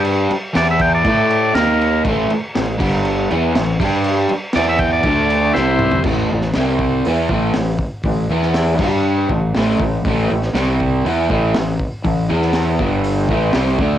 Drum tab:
CC |x-x-x-x-x-x-x-x-|x-x-x-x-x-x-x-x-|x-x-x-x-x-x-----|x---------------|
HH |----------------|----------------|----------------|----o---o---o---|
SD |----o-------o---|----o-------o---|----o-------o---|---oo-------o---|
T2 |----------------|----------------|--------------o-|----------------|
FT |----------------|----------------|---------------o|----------------|
BD |------o-o-------|o-----o-------o-|------o-o-------|o-----o---o---o-|

CC |------x---------|----------------|----------------|
HH |o---o-------o---|o---o---o---o---|o---o---o---o---|
SD |---oo-------o---|---oo-------o---|---oo-------o---|
T2 |----------------|----------------|----------------|
FT |----------------|----------------|----------------|
BD |o-----o---o---o-|o-----o---o---o-|o-----o---o---o-|